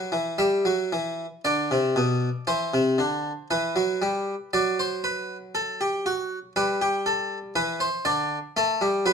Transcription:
Already playing: F#3 B4
0.12 E3
0.38 G3 E5
0.65 F#3
0.92 E3
1.45 D3 D5
1.71 C3
1.96 B2
2.47 E3 C5
2.74 C3
2.98 D3
3.51 E3 B4
3.76 F#3
4.02 G3
4.53 F#3 D5
4.79 C5
5.04 B4
5.55 A4
5.81 G4
6.06 F#4
6.56 G3 B4
6.81 G4
7.06 A4
7.56 E3 B4
7.80 C5
8.05 D3 D5
8.57 A3 A4
8.81 G3
9.06 F#3 B4

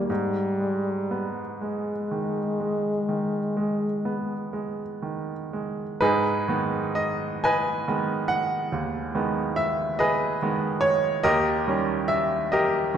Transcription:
Already playing: D#2 D#3 G3 A#3
0.08 G#2 G3
0.60 G#3
1.11 B3
1.60 G#3
2.11 D#3
2.60 G#3
3.09 D#3
3.57 G#3
4.05 B3
4.53 G#3
5.02 D#3
5.53 G#3
6.01 G#2 D#4 G#4 B4
6.48 D#3 G#3 B3
6.95 D#5
7.44 B4 D#5 G#5
7.88 D#3 G#3 B3
8.28 F#5
8.72 D#2
9.15 D#3 G#3 B3
9.56 E5
9.99 G#4 B4 D#5
10.42 D#3 G#3 B3
10.81 C#5
11.23 D#2 G4 A#4 D#5
11.67 D#3 G3 C#4
12.08 E5
12.52 G4 A#4 D#5
12.94 D#3

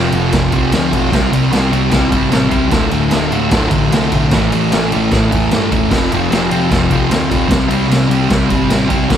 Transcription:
Already playing: F1 F2 C3 F3
0.12 F1 F2 C3 F3, ride
0.32 F1 F2 C3 F3, kick, snare, ride
0.52 C2 F2 C3 F3, kick, ride
0.72 D2 F2 C3 F3, snare, ride
0.92 B1 F2 C3 F3, kick, ride
1.11 C2 C3 G3 C4, kick, snare, ride
1.32 C2 C3 G3 C4, ride
1.52 C2 C3 G3 C4, snare, ride
1.71 C2 C3 G3 C4, ride
1.91 C2 C3 G3 C4, kick, snare, ride
2.10 G1 C3 G3 C4, kick, ride
2.30 A1 C3 G3 C4, snare, ride
2.50 C#2 C3 G3 C4, kick, ride
2.69 D1 D2 A2 D3, kick, snare, ride
2.90 D1 D2 A2 D3, ride
3.11 D1 D2 A2 D3, snare, ride
3.31 D1 D2 A2 D3, ride
3.50 D1 D2 A2 D3, kick, snare, ride
3.70 A1 D2 A2 D3, kick, ride
3.91 C2 D2 A2 D3, snare, ride
4.12 B1 D2 A2 D3, kick, ride
4.31 A1 A2 E3 A3, kick, snare, ride
4.52 A1 A2 E3 A3, ride
4.72 A1 A2 E3 A3, snare, ride
4.91 A1 A2 E3 A3, ride
5.11 A1 A2 E3 A3, kick, snare, ride
5.30 E2 A2 E3 A3, kick, ride
5.51 G2 A2 E3 A3, snare, ride
5.71 E1 A2 E3 A3, kick, ride
5.90 F1 F2 C3 F3, kick, snare, crash
6.12 F1 F2 C3 F3, ride
6.30 F1 F2 C3 F3, snare, ride
6.50 F1 F2 C3 F3, ride
6.70 F1 F2 C3 F3, kick, snare, ride
6.90 C2 F2 C3 F3, kick, ride
7.09 D2 F2 C3 F3, snare, ride
7.30 D1 F2 C3 F3, kick, ride
7.48 C2 C3 G3 C4, kick, snare, ride
7.68 C2 C3 G3 C4, ride
7.88 C2 C3 G3 C4, ride
7.92 snare
8.08 C2 C3 G3 C4, ride
8.29 C2 C3 G3 C4, kick, snare, ride
8.49 G1 C3 G3 C4, kick, ride
8.70 A1 C3 G3 C4, snare, ride
8.88 C2 C3 G3 C4, kick, ride
9.09 D1 D2 A2 D3, kick, snare, ride

